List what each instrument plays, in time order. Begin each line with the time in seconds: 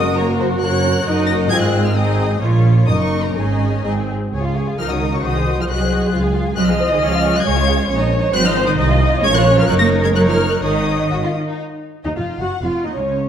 Already playing: double bass section F#1, cello section F#2, viola section F#4, violin section A#4 D#5 D#6
0.17 viola section A#3, violin section C#5 A#5
0.40 violin section C5
0.61 double bass section F#1, cello section F#2, viola section A#3, violin section A#4 C#5 F#6
0.84 viola section C#4
1.05 double bass section F#1, cello section F#2, viola section D#4 F#4, violin section D#5
1.27 violin section A#6
1.49 double bass section G#1, cello section G#2, viola section C4 F4, violin section G#4 G#6
1.61 violin section F#6
1.85 violin section F6
1.94 viola section C4 D#4, violin section G#4 D#5 D#6
2.40 double bass section A#1, cello section A#2, viola section A#3 F4, violin section F4 C#5
2.86 double bass section F#1, cello section F#2, viola section A#3 D#4, violin section A#4 D#5 D#6
3.00 violin section C#6
3.24 violin section A#5
3.35 double bass section G#1, cello section G#2, viola section C#4 D#4, violin section G#4 D#5 G#5
3.84 double bass section G#1, cello section G#2, viola section C4 D#4, violin section G#4 D#5
4.32 double bass section C#2, viola section G#4, violin section G#4 C#5
4.43 violin section F4 F5
4.55 violin section G#4 C#5
4.66 violin section F4 F5
4.78 double bass section C#2, cello section F3, violin section D#4 D#5 F6, viola section A#4
4.90 cello section D#3, violin section F#4 C#5 D#6
5.02 violin section D#4 D#5
5.13 cello section C#3, violin section F#4 C#5 C#6
5.23 double bass section C2, cello section D#3, violin section F#4 D#5 D#6, viola section C5
5.36 violin section G#4 C5
5.46 violin section F#4 D#5
5.57 cello section F3, violin section G#4 C5 F6
5.68 double bass section C2, cello section F#3, violin section F#4 D#5 F#6, viola section G#4
5.81 violin section G#4 C5
5.91 violin section F#4 D#5
6.04 violin section G#4 C5
6.13 double bass section C#2, violin section F4 F5
6.24 violin section G#4 G#5
6.34 violin section F4 F5
6.45 violin section G#4 G#5
6.56 double bass section C2, cello section F#3, violin section C5 D#5 F#6, viola section D#5
6.68 cello section F3, violin section G#4 C5 F6
6.80 violin section C5 D#5
6.90 cello section D#3, violin section G#4 C5 D#6
7.01 double bass section C#2, cello section F3, violin section G#4 C#5 F6
7.13 violin section F4 F5
7.22 violin section G#4 C#5
7.33 cello section F#3, violin section F4 F5 F#6
7.45 double bass section C#2, cello section G#3, violin section G#4 C#5 G#6, viola section C#5
7.57 violin section F4 F5
7.67 violin section G#4 C#5
7.77 violin section F4 F5
7.89 double bass section A#1, violin section C#4 C#5, viola section C#5
7.99 violin section D#4 D#5
8.11 violin section C#4 C#5
8.21 violin section D#4 D#5
8.31 double bass section G#1, cello section F#3, violin section C4 C5 F#6, viola section C5
8.44 cello section F3, violin section D#4 D#5 F6
8.56 violin section C4 C5
8.64 cello section D#3, violin section D#4 D#5 D#6
8.77 double bass section C2, violin section D#4 D#5, viola section D#5
8.88 violin section F4 F5
9.01 violin section D#4 D#5
9.10 violin section F4 F5
9.21 double bass section A#1, cello section G#3, violin section C#4 C#5 G#6, viola section C#5
9.32 cello section F#3, violin section F4 A#4
9.36 violin section F#6
9.43 violin section C#4 C#5
9.56 cello section F3, violin section F4 A#4 F6
9.67 double bass section F#1, cello section F#3, violin section D#4 C#5 F#6, viola section A#4
9.79 cello section A#3, violin section A#6
10.03 cello section G#3, violin section G#6
10.13 cello section F#3, violin section D#4 C#5 F#6
10.27 cello section F3, violin section F6
10.51 cello section F#3, violin section F#6
10.61 double bass section G#1, cello section D#3, violin section D#4 C#5 D#6, viola section D#5
11.10 double bass section G#1, violin section F#4
11.24 violin section F4
11.47 violin section D#4
12.04 cello section D#2, double bass section D#2, viola section D#4, violin section D#5
12.16 double bass section F1, cello section F2, viola section F4, violin section F5
12.38 double bass section F#1, cello section F#2, viola section F#4, violin section F#5
12.61 double bass section F1, cello section F2, viola section F4, violin section F5
12.82 cello section D#2, viola section D#4, violin section D#5
12.86 violin section D#5
12.94 double bass section C#2, cello section C#2, viola section C#4, violin section C#5
12.99 violin section C#5